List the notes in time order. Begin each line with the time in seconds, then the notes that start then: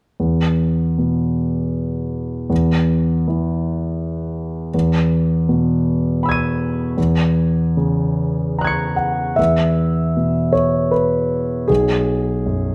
0.20 E2
0.98 B2
2.50 E2
3.28 E3
4.74 E2
5.49 B2
6.23 B5 E6
6.29 G#6 D#7
6.97 E2
7.77 C#3
8.59 A#5 F#6
8.64 G#6 C#7
8.96 F#5
9.36 E2 E5
10.17 B2
10.53 C#5
10.91 B4
11.68 B1 G#4
12.46 F#2